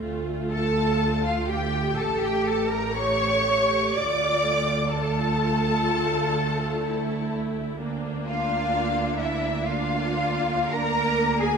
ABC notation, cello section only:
X:1
M:4/4
L:1/16
Q:1/4=62
K:Ddor
V:1 name="Cello section"
z2 A3 F G2 A G A _B ^c4 | d4 A8- A2 z2 | z2 F4 E2 F4 _B3 ^G |]